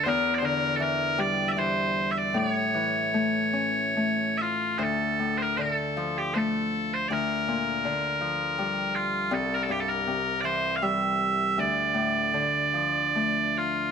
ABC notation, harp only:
X:1
M:3/4
L:1/8
Q:1/4=78
K:Dm
V:1 name="Harp" clef=bass
E,, D, E, G, E,2 | A,, E, A, ^C A,2 | D,, A,, D, F, A,2 | D,, B,, D, F, G,2 |
C,, G,, C, E, G,2 | D,, A,, D, F, A,2 |]